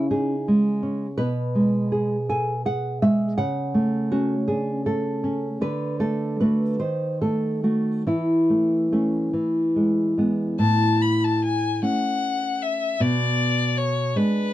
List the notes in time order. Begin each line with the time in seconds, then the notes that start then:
Already playing: C#3 C#4 E4
0.11 D#4 G#4
0.48 G#3
0.83 C#4
1.18 B2 B4
1.55 G#3
1.92 G#4
2.29 A4 G#5
2.65 G#4 F#5
3.02 G#3 E5
3.38 C#3 F#5
3.74 A3
4.12 C#4 F#4
4.48 D4 G#4
4.86 A3 A4
5.24 C#4
5.61 D3 B4
6.00 A3 A4
6.40 A3 F#4 B4
6.80 D#3 C5
7.22 A3 A4
7.64 A3 F#4
8.07 E3 E4
8.50 A3
8.92 A3 C#4
9.33 E3
9.76 G#3
10.17 G#3 B3
10.59 A2 A5
11.02 B5
11.24 A5
11.44 G#5
11.82 A3 C#4 F#5
12.62 E5
13.00 B2 D5
13.78 C#5
14.16 G#3 D4 B4